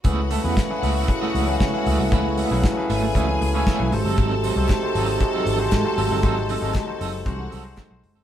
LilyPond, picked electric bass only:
\new Staff \with { instrumentName = "Picked electric bass" } { \clef bass \time 4/4 \key fis \dorian \tempo 4 = 117 cis,8. e,16 r8 cis,8 r8 cis,8 cis16 r16 cis,16 bis,,16 | cis,8. b,,16 r8 gis,,8 cis,8 cis,8 r16 b,,16 gis,,16 g,,16 | gis,,8. bis,,16 r8 gis,,8 r8 gis,,8 gis,16 r16 gis,,16 g,,16 | gis,,8. gis,,16 r8 fis,,8 bis,,8 bis,,8 r16 b,,16 fis,,16 g,,16 | }